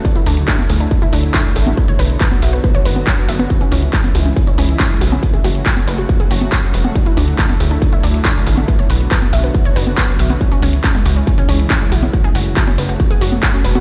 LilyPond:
<<
  \new Staff \with { instrumentName = "Synth arpeggio sound" } { \time 4/4 \key fis \minor \tempo 4 = 139 d'16 e'16 d'16 r16 d'16 r16 gis'16 d'16 d'16 e'16 d'16 r16 d'16 r16 gis'16 d'16 | b'16 cis''16 b'16 r16 b'16 r16 e''16 b'16 b'16 cis''16 b'16 r16 b'16 r16 e''16 b'16 | cis'16 cis'16 cis'16 r16 cis'16 r16 fis'16 cis'16 cis'16 cis'16 cis'16 r16 cis'16 r16 fis'16 cis'16 | fis'16 gis'16 fis'16 r16 fis'16 r16 b'16 fis'16 fis'16 gis'16 fis'16 r16 fis'16 r16 b'16 fis'16 |
d'16 e'16 d'16 r16 d'16 r16 gis'16 d'16 d'16 e'16 d'16 r16 d'16 r16 gis'16 d'16 | b'16 cis''16 b'16 r16 b'16 r16 e''16 b'16 b'16 cis''16 b'16 r16 b'16 r16 e''16 b'16 | cis'16 cis'16 cis'16 r16 cis'16 gis16 fis'16 cis'16 cis'16 cis'16 cis'16 r16 cis'16 gis16 fis'16 cis'16 | fis'16 gis'16 fis'16 r16 fis'16 cis'16 b'16 fis'16 fis'16 gis'16 fis'16 r16 fis'16 cis'16 b'16 fis'16 | }
  \new Staff \with { instrumentName = "Analog synth bass" } { \clef bass \time 4/4 \key fis \minor r8 d,8 r8 d,8 r8 d,8 r8 a,,8 | r8 b,,8 r8 b,,8 r8 fis,,8 r8 fis,,8 | r8 cis,8 r8 cis,8 r8 cis,8 r8 b,,8 | r8 fis,,8 r8 fis,,8 r8 fis,,8 r8 e,,8 |
r8 d,8 r8 d,8 r8 d,8 r8 a,,8 | r8 b,,8 r8 b,,8 r8 fis,,8 r8 b,,8 | r8 cis,8 r8 cis,8 r8 cis,8 r8 b,,8 | r8 fis,,8 r8 fis,,8 r8 fis,,8 r8 e,,8 | }
  \new DrumStaff \with { instrumentName = "Drums" } \drummode { \time 4/4 <hh bd>16 hh16 hho16 hh16 <hc hh bd>16 <cgho hh>16 hho16 hh16 <hh bd>16 hh16 hho16 hh16 <hc hh bd>8 hho16 <cgho hh>16 | <hh bd>16 hh16 hho16 hh16 <hc hh bd>16 <cgho hh>16 hho16 hh16 <hh bd>16 hh16 hho16 <cgho hh>16 <hc hh bd>16 hh16 hho16 <cgho hh>16 | <hh bd>16 hh16 hho16 hh16 <hc hh bd>16 <cgho hh>16 hho16 hh16 <hh bd>16 hh16 hho16 hh16 <hc hh bd>8 hho16 <cgho hh>16 | <hh bd>16 hh16 hho16 hh16 <hc hh bd>16 <cgho hh>16 hho16 hh16 <hh bd>16 hh16 hho16 <cgho hh>16 <hc hh bd>16 hh16 hho16 <cgho hh>16 |
<hh bd>16 hh16 hho16 hh16 <hc hh bd>16 <cgho hh>16 hho16 hh16 <hh bd>16 hh16 hho16 hh16 <hc hh bd>8 hho16 <cgho hh>16 | <hh bd>16 hh16 hho16 hh16 <hc hh bd>16 <cgho hh>16 hho16 hh16 <hh bd>16 hh16 hho16 <cgho hh>16 <hc hh bd>16 hh16 hho16 <cgho hh>16 | <hh bd>16 hh16 hho16 hh16 <hc hh bd>16 <cgho hh>16 hho16 hh16 <hh bd>16 hh16 hho16 hh16 <hc hh bd>8 hho16 <cgho hh>16 | <hh bd>16 hh16 hho16 hh16 <hc hh bd>16 <cgho hh>16 hho16 hh16 <hh bd>16 hh16 hho16 <cgho hh>16 <hc hh bd>16 hh16 hho16 <cgho hh>16 | }
>>